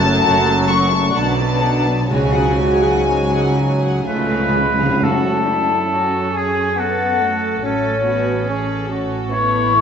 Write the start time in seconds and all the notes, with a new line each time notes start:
Already playing: F#1 F#2 F#3 A3 C#4 A5
0.03 A3 F#4 A4 A5
0.24 F#1 F#2 F#3 C#4 F#4 F#5
0.46 A3 F#4 A4 A5
0.68 F#3 C#4 F#4 F#5 C#6
0.88 A4 A5
0.92 A3 F#4
1.10 F#2 F#3 D5 F#5
1.14 B1 B2 D3 B3 D4 A5
1.33 B4 D5
1.39 F#3 B3
1.59 D3 D4 D5 F#5
1.85 F#3 B3 B4 D5
2.06 F#3 F#4 C#5
2.10 C#2 G#2 C#3 G#3 C#4 F#4 G#5
2.32 F#3 G#4 F#5
2.56 F#4 C#5
2.60 G#3 F#4
2.81 F#3 G#4 F#5
3.07 C#3 G#3 F#4 C#5
3.11 C#2
3.32 G#4 F#5
3.57 F#3 F#4 C#5
3.81 G#4 F#5
4.06 C#2 G#2 C#3 G#3 A3 C#4 F4 B4 C#5 B5
4.16 C#3
4.23 C#3
4.28 C#3 G#4 F5
4.40 C#3
4.48 C#3
4.54 C#3 G#3 F4 C#5
4.66 C#3
4.74 C#3 G#4
4.78 C#3 F5
4.89 C#3
5.01 F#2 F#3 A3 C#4 F#4 A4 A5
5.45 D4 E4
5.90 C#4 F#4 A4
6.34 G#4 G#5
6.77 B3 F#4 A4 F#5
7.21 A3
7.62 A1 F#3 A3 C#4 A4 C#5
8.05 B3 F#4
8.47 C#4 G#4
8.90 C#4 F#4
9.30 B3 E4 C#5 C#6
9.73 A3